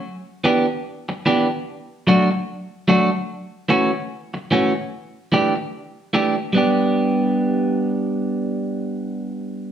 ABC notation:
X:1
M:4/4
L:1/8
Q:"Swing 16ths" 1/4=74
K:Glyd
V:1 name="Clean electric guitar"
z [E,B,DG] z [E,B,DG] z [F,A,DF] z [F,A,DF] | z [E,A,CF] z [E,A,CF] z [E,A,DG] z [E,A,DG] | [G,B,DG]8 |]